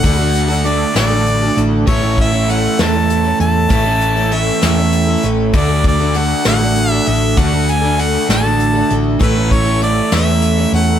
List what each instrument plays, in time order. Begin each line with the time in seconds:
Already playing: harmonica F#5
0.03 fingered electric bass D2, twelve-string acoustic guitar D3 A3 D4 F#4 A4, kick, closed hi-hat
0.17 twelve-string acoustic guitar D4 F#4 A4
0.35 closed hi-hat
0.48 twelve-string acoustic guitar D4 F#4 A4
0.64 twelve-string acoustic guitar A3 D4 F#4 A4, harmonica D5, closed hi-hat
0.94 fingered electric bass A1, twelve-string acoustic guitar D3 A3 D4 F#4 A4, harmonica D5, snare, closed hi-hat
1.10 twelve-string acoustic guitar D4 F#4 A4
1.26 closed hi-hat
1.42 twelve-string acoustic guitar D4 F#4 A4
1.56 fingered electric bass A1, twelve-string acoustic guitar A3 D4 F#4 A4, closed hi-hat
1.87 fingered electric bass A1, twelve-string acoustic guitar A2 E3 A3 C#4 E4 A4, harmonica C#5, kick, closed hi-hat
2.02 twelve-string acoustic guitar A3 C#4 E4 A4
2.18 harmonica E5, kick, closed hi-hat
2.32 twelve-string acoustic guitar A3 C#4 E4 A4
2.48 twelve-string acoustic guitar A3 C#4 E4 A4, harmonica F#5, closed hi-hat
2.79 fingered electric bass E2, twelve-string acoustic guitar A2 E3 A3 C#4 E4 A4, harmonica A5, snare, closed hi-hat
2.93 twelve-string acoustic guitar A3 C#4 E4 A4
3.10 closed hi-hat
3.24 twelve-string acoustic guitar A3 C#4 E4 A4
3.38 fingered electric bass E2, twelve-string acoustic guitar A3 C#4 E4 A4, harmonica A5, closed hi-hat
3.69 fingered electric bass A1, twelve-string acoustic guitar A2 E3 A3 C#4 E4 A4, kick, closed hi-hat
3.85 twelve-string acoustic guitar A3 C#4 E4 A4
4.01 closed hi-hat
4.16 twelve-string acoustic guitar A3 C#4 E4 A4
4.32 twelve-string acoustic guitar A3 C#4 E4 A4, harmonica E5, closed hi-hat
4.61 fingered electric bass E2, twelve-string acoustic guitar A2 E3 A3 C#4 E4 A4, harmonica E5, snare, closed hi-hat
4.76 twelve-string acoustic guitar A3 C#4 E4 A4
4.92 closed hi-hat
5.07 twelve-string acoustic guitar A3 C#4 E4 A4
5.23 fingered electric bass A1, twelve-string acoustic guitar A3 C#4 E4 A4, closed hi-hat
5.53 fingered electric bass D2, twelve-string acoustic guitar D3 A3 D4 F#4 A4, harmonica D5, kick, closed hi-hat
5.68 twelve-string acoustic guitar D4 F#4 A4
5.84 harmonica D5, kick, closed hi-hat
6.00 twelve-string acoustic guitar D4 F#4 A4
6.14 twelve-string acoustic guitar A3 D4 F#4, harmonica F#5, closed hi-hat
6.19 twelve-string acoustic guitar A4
6.45 fingered electric bass A1, twelve-string acoustic guitar D3 A3 D4 F#4 A4, harmonica F#5, snare, closed hi-hat
6.60 twelve-string acoustic guitar D4 F#4 A4
6.75 closed hi-hat
6.91 twelve-string acoustic guitar D4 F#4 A4, harmonica E5
7.06 fingered electric bass A1, twelve-string acoustic guitar A3 D4 F#4 A4, harmonica E5, closed hi-hat
7.37 fingered electric bass D2, twelve-string acoustic guitar D3 A3 D4 F#4 A4, harmonica F#5, kick, closed hi-hat
7.52 twelve-string acoustic guitar D4 F#4 A4
7.68 harmonica G#5, closed hi-hat
7.81 twelve-string acoustic guitar D4 F#4 A4
7.97 twelve-string acoustic guitar A3 D4 F#4 A4, harmonica F#5, closed hi-hat
8.29 fingered electric bass A1, twelve-string acoustic guitar D3 A3 D4 F#4 A4, harmonica A5, snare, closed hi-hat
8.43 twelve-string acoustic guitar D4 F#4 A4
8.60 closed hi-hat
8.73 twelve-string acoustic guitar D4 F#4 A4
8.89 fingered electric bass A1, twelve-string acoustic guitar A3 D4 F#4 A4, closed hi-hat
9.19 fingered electric bass A1, twelve-string acoustic guitar A2 E3 A3 C#4 E4 A4, harmonica B4, kick, closed hi-hat
9.35 twelve-string acoustic guitar A3 C#4 E4 A4
9.51 harmonica C#5, kick, closed hi-hat
9.65 twelve-string acoustic guitar A3 C#4 E4 A4
9.81 twelve-string acoustic guitar A3 E4 A4, harmonica D5, closed hi-hat
10.12 fingered electric bass E2, twelve-string acoustic guitar A2 E3 A3 C#4 E4 A4, snare, closed hi-hat
10.16 harmonica E5
10.28 twelve-string acoustic guitar A3 C#4 E4 A4
10.42 closed hi-hat
10.57 twelve-string acoustic guitar A3 C#4 E4 A4
10.72 fingered electric bass E2, twelve-string acoustic guitar A3 C#4 E4 A4, harmonica F#5, closed hi-hat